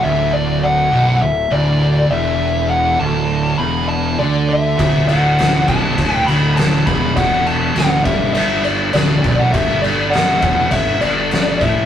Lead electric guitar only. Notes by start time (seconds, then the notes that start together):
0.03 E5
0.33 D5
0.63 F#5
1.22 E5
1.52 D5
2.10 E5
2.70 F#5
3.00 A5
3.58 B5
3.89 A5
4.19 D5
4.49 E5
5.08 F#5
5.68 A5
6.15 G5
6.27 B5
6.56 A5
6.87 B5
7.16 F#5
7.47 A5
7.76 F#5
8.04 E5
8.33 E5
8.64 D5
8.94 D5
9.39 F#5
9.52 E5
9.82 D5
10.10 F#5
10.71 E5
11.01 D5
11.61 E5